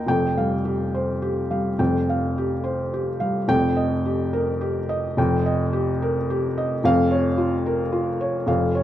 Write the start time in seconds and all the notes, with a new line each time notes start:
0.07 F1 F2 G5
0.37 G3 F5
0.65 G4
0.94 C5
1.22 G4
1.51 G3 F5
1.79 F1 F2 G5
2.09 F5
2.38 G4
2.64 C5
2.94 G4
3.20 G3 F5
3.48 F1 F2 G5
3.77 D#5
4.05 G4
4.33 A#4
4.61 G4
4.89 D#5
5.17 F1 F2 G5
5.46 D#5
5.73 G4
6.02 A#4
6.30 G4
6.58 D#5
6.84 F1 F2 F5
7.11 C#5
7.38 F4
7.66 A#4
7.92 F4
8.21 C#5
8.47 F1 F2 F5
8.75 C#5